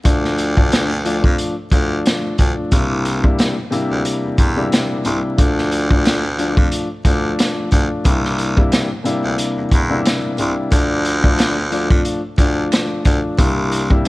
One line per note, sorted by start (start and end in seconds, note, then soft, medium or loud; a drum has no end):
0.04 1.20 D2 loud
0.04 0.52 F3 medium
0.04 0.52 A3 medium
0.04 0.53 D4 loud
0.04 kick loud
0.04 closed hi-hat loud
0.25 snare soft
0.38 closed hi-hat medium
0.56 0.87 F3 loud
0.56 0.87 A3 medium
0.56 0.88 D4 loud
0.56 kick medium
0.72 snare loud
0.72 closed hi-hat medium
1.04 1.52 F3 loud
1.04 1.52 A3 medium
1.04 1.53 D4 loud
1.04 closed hi-hat medium
1.24 1.36 F2 medium
1.24 kick loud
1.38 closed hi-hat medium
1.71 1.99 D2 loud
1.71 2.33 F3 medium
1.71 2.34 A3 medium
1.71 2.34 D4 loud
1.71 kick medium
1.71 closed hi-hat medium
2.06 snare loud
2.06 closed hi-hat medium
2.38 2.54 D2 loud
2.38 2.69 F3 medium
2.38 2.70 A3 medium
2.38 2.70 D4 medium
2.38 kick medium
2.38 closed hi-hat medium
2.72 3.27 C2 loud
2.72 3.19 C3 medium
2.72 3.19 G3 medium
2.72 3.19 A#3 medium
2.72 3.20 D4 medium
2.72 3.20 E4 loud
2.72 kick loud
2.72 closed hi-hat loud
3.05 closed hi-hat medium
3.23 3.54 C3 medium
3.23 3.54 G3 medium
3.23 3.54 A#3 medium
3.23 3.54 D4 medium
3.23 3.55 E4 medium
3.23 kick medium
3.39 snare loud
3.39 closed hi-hat medium
3.71 4.49 C3 medium
3.71 4.49 G3 medium
3.71 4.49 A#3 medium
3.71 4.50 D4 medium
3.71 4.50 E4 loud
3.71 closed hi-hat medium
3.91 4.03 D2 medium
4.05 closed hi-hat medium
4.24 4.30 E2 soft
4.38 4.66 E2 medium
4.38 kick medium
4.38 closed hi-hat medium
4.56 5.01 C3 medium
4.56 5.02 G3 medium
4.56 5.02 A#3 medium
4.56 5.02 D4 medium
4.56 5.02 E4 loud
4.72 snare loud
4.72 closed hi-hat medium
5.05 5.21 C2 loud
5.05 5.36 C3 medium
5.05 5.36 G3 medium
5.05 5.36 A#3 medium
5.05 5.37 D4 medium
5.05 5.37 E4 medium
5.05 closed hi-hat medium
5.37 6.53 D2 loud
5.37 5.85 F3 medium
5.37 5.85 A3 medium
5.37 5.86 D4 loud
5.37 kick loud
5.37 closed hi-hat loud
5.58 snare soft
5.72 closed hi-hat medium
5.89 6.20 F3 medium
5.89 6.21 A3 medium
5.89 6.21 D4 loud
5.89 kick medium
6.05 finger snap medium
6.05 snare loud
6.05 closed hi-hat medium
6.37 6.85 F3 loud
6.37 6.86 A3 medium
6.37 6.86 D4 loud
6.37 closed hi-hat medium
6.57 6.70 F2 medium
6.57 kick loud
6.72 closed hi-hat medium
7.05 7.33 D2 medium
7.05 7.67 F3 medium
7.05 7.67 A3 medium
7.05 7.68 D4 loud
7.05 kick medium
7.05 closed hi-hat medium
7.39 finger snap medium
7.39 snare loud
7.39 closed hi-hat medium
7.71 7.87 D2 loud
7.71 8.02 F3 medium
7.71 8.03 A3 medium
7.71 8.03 D4 medium
7.71 kick medium
7.71 closed hi-hat medium
8.05 8.60 C2 loud
8.05 8.52 C3 medium
8.05 8.52 G3 medium
8.05 8.53 A#3 medium
8.05 8.53 D4 medium
8.05 8.53 E4 loud
8.05 kick loud
8.05 closed hi-hat loud
8.25 snare soft
8.38 closed hi-hat medium
8.56 8.87 C3 medium
8.56 8.87 G3 medium
8.56 8.87 A#3 medium
8.56 8.88 D4 medium
8.56 8.88 E4 loud
8.56 kick medium
8.72 finger snap medium
8.72 snare loud
8.72 closed hi-hat medium
9.04 9.82 C3 medium
9.04 9.82 G3 medium
9.04 9.83 A#3 medium
9.04 9.83 D4 medium
9.04 9.83 E4 loud
9.04 closed hi-hat medium
9.24 9.36 D2 medium
9.38 closed hi-hat medium
9.57 9.63 E2 soft
9.71 9.99 E2 loud
9.71 kick medium
9.71 closed hi-hat medium
9.89 10.35 C3 medium
9.89 10.35 G3 medium
9.89 10.35 A#3 medium
9.89 10.35 D4 medium
9.89 10.36 E4 loud
10.05 finger snap medium
10.05 snare loud
10.05 closed hi-hat medium
10.38 10.54 C2 loud
10.38 10.69 C3 medium
10.38 10.69 G3 medium
10.38 10.70 A#3 medium
10.38 10.70 D4 medium
10.38 10.70 E4 medium
10.38 closed hi-hat medium
10.71 11.86 D2 loud
10.71 11.18 F3 medium
10.71 11.19 A3 medium
10.71 11.19 D4 loud
10.71 kick loud
10.71 closed hi-hat loud
11.05 closed hi-hat medium
11.22 11.53 F3 medium
11.22 11.54 A3 medium
11.22 11.54 D4 loud
11.22 kick medium
11.39 finger snap medium
11.39 snare loud
11.39 closed hi-hat medium
11.70 12.18 F3 loud
11.70 12.19 A3 medium
11.70 12.19 D4 loud
11.70 closed hi-hat medium
11.90 12.03 F2 medium
11.90 kick loud
12.05 closed hi-hat medium
12.38 12.66 D2 loud
12.38 13.00 F3 medium
12.38 13.01 A3 medium
12.38 13.01 D4 loud
12.38 kick medium
12.38 closed hi-hat medium
12.72 finger snap medium
12.72 snare loud
12.72 closed hi-hat medium
13.04 13.20 D2 medium
13.04 13.36 F3 medium
13.04 13.36 A3 medium
13.04 13.37 D4 medium
13.04 kick medium
13.04 closed hi-hat medium
13.38 13.94 C2 loud
13.38 13.85 C3 medium
13.38 13.86 G3 medium
13.38 13.86 A#3 medium
13.38 13.86 D4 medium
13.38 13.86 E4 loud
13.38 kick loud
13.38 closed hi-hat loud
13.72 closed hi-hat medium
13.90 14.08 C3 medium
13.90 14.08 G3 medium
13.90 14.08 A#3 medium
13.90 14.08 D4 medium
13.90 14.08 E4 loud
13.90 kick medium